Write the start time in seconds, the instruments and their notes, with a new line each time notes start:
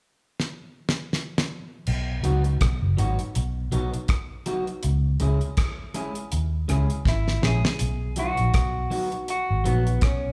0.40 snare
0.89 snare
1.13 snare
1.38 snare
1.86 fingered electric bass B1, crash
2.23 fingered electric bass C#2, clean electric guitar F#3 B3 D#4 F#4, closed hi-hat
2.44 closed hi-hat
2.61 fingered electric bass B1, kick, cross-stick, closed hi-hat
2.82 fingered electric bass F#1
2.97 fingered electric bass G#1, clean electric guitar F#3 B3 D#4 F#4, closed hi-hat
3.19 closed hi-hat
3.35 fingered electric bass B1, closed hi-hat
3.72 fingered electric bass B1, clean electric guitar F#3 B3 D#4 F#4, closed hi-hat
3.94 closed hi-hat
4.08 kick, cross-stick, closed hi-hat
4.46 clean electric guitar F#3 B3 D#4 F#4, closed hi-hat
4.67 closed hi-hat
4.83 fingered electric bass C#2, closed hi-hat
5.20 fingered electric bass C#2, clean electric guitar G#3 C#4 E4 G#4, closed hi-hat
5.41 closed hi-hat
5.57 kick, cross-stick, closed hi-hat
5.94 clean electric guitar G#3 C#4 E4 G#4, closed hi-hat
6.15 closed hi-hat
6.32 fingered electric bass D#2, closed hi-hat
6.68 fingered electric bass C#2, clean electric guitar G#3 C#4 E4 G#4, cross-stick, closed hi-hat
6.90 closed hi-hat
7.05 fingered electric bass G#1, clean electric guitar E4, kick, snare
7.28 snare
7.42 fingered electric bass A#1, clean electric guitar G#3 C#4 E4 G#4, snare
7.65 snare
7.79 fingered electric bass B1, closed hi-hat
8.16 clean electric guitar F#3 B3 D#4 F#4, closed hi-hat
8.37 fingered electric bass A#1, closed hi-hat
8.54 fingered electric bass B1, kick, cross-stick, closed hi-hat
8.90 clean electric guitar F#3 B3 D#4 F#4, open hi-hat
9.12 closed hi-hat
9.28 clean electric guitar F#4, closed hi-hat
9.50 fingered electric bass G#1
9.64 fingered electric bass A#1, clean electric guitar F#3 B3 D#4 F#4, closed hi-hat
9.87 closed hi-hat
10.01 fingered electric bass B1, clean electric guitar C#4, kick, cross-stick, closed hi-hat